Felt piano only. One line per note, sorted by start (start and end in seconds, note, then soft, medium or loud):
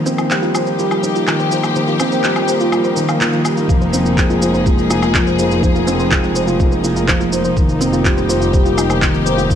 0.00 1.27 D#3 medium
0.06 0.29 C4 loud
0.30 0.54 G3 medium
0.55 0.78 C5 medium
0.79 1.02 G3 medium
1.03 1.26 D#4 medium
1.27 1.41 D#3 medium
1.51 1.65 C5 medium
1.76 1.99 D#3 medium
2.00 2.23 C4 loud
2.24 2.47 G3 medium
2.48 2.71 C5 medium
2.72 2.96 G3 medium
2.97 3.19 D#3 medium
3.21 3.35 D#3 medium
3.45 3.68 G3 medium
3.69 3.92 F3 medium
3.93 4.16 C4 medium
4.18 4.41 G#3 medium
4.42 4.65 C5 medium
4.66 4.89 G#3 medium
4.90 5.13 F4 medium
5.14 5.28 F3 medium
5.39 5.53 C5 medium
5.63 5.86 F3 medium
5.87 6.10 C4 loud
6.11 6.34 G#3 medium
6.36 6.59 C5 medium
6.60 6.83 G#3 medium
6.84 7.07 F4 medium
7.08 7.22 F3 medium
7.32 7.46 C5 medium
7.56 7.80 D#3 medium
7.81 8.04 C4 medium
8.05 8.28 G3 medium
8.29 8.52 C5 medium
8.53 8.76 G3 medium
8.78 9.01 D#4 medium
9.02 9.16 D#3 medium
9.26 9.40 C5 medium
9.50 9.55 D#3 medium